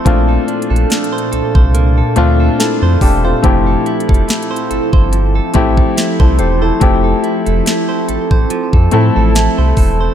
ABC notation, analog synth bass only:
X:1
M:4/4
L:1/16
Q:"Swing 16ths" 1/4=71
K:F
V:1 name="Analog synth bass" clef=bass
B,,,2 z B,,, z2 C,, C,,3 D,,2 z F,, E,,,2 | F,,,2 z F,,, z2 G,,, G,,,3 A,,,2 z C,, E,,,2 | F,,,2 z F,,, z2 A,,, A,,, z F,, A,, A,,,2 C,, E,,,2 |]